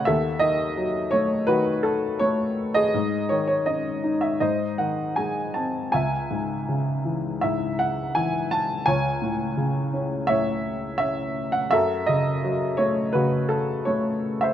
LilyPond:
<<
  \new Staff \with { instrumentName = "Upright piano" } { \time 4/4 \key cis \minor \tempo 4 = 83 << { e''8 dis''4 cis''8 b'8 a'8 cis''8. dis''16~ | dis''8 cis''16 cis''16 dis''8. e''16 dis''8 fis''8 gis''8 a''8 | gis''2 e''8 fis''8 gis''8 a''8 | gis''2 e''4 e''8. fis''16 |
e''8 dis''4 cis''8 b'8 a'8 cis''8. e''16 | } \\ { a'2 fis'4.~ fis'16 gis'16~ | gis'4.~ gis'16 r16 bis'2 | e''2 e'2 | cis''2 cis''2 |
a'2 fis'4.~ fis'16 bis'16 | } >> }
  \new Staff \with { instrumentName = "Upright piano" } { \clef bass \time 4/4 \key cis \minor dis,8 dis8 fis8 a8 dis4 a4 | gis,8 dis8 cis'8 dis'8 gis,8 dis8 gis8 bis8 | cis,8 gis,8 cis8 e8 gis,4 e4 | cis,8 a,8 cis8 cis'8 a,4 cis'4 |
fis,8 cis8 fis8 a8 cis4 a4 | }
>>